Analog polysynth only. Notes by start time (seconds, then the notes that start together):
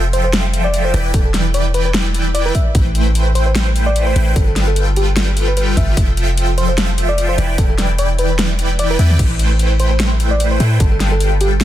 Already playing: F3 F4 A4 E5 G5
0.94 E3 E4 B4 D5 G5
1.14 E3 E4 B4 D5 G5
2.75 A3 E4 B4 C5 G5
4.16 A3 E4 B4 C5 G5
4.36 G3 F4 A4 B4
5.77 F4 A4 B4
5.97 F3 F4 A4 E5
7.38 E3 E4 B4 D5 G5
7.58 E3 E4 B4 D5 G5
8.99 E3 E4 B4 D5 G5
9.19 A3 E4 B4 C5 G5
10.60 A3 E4 B4 C5 G5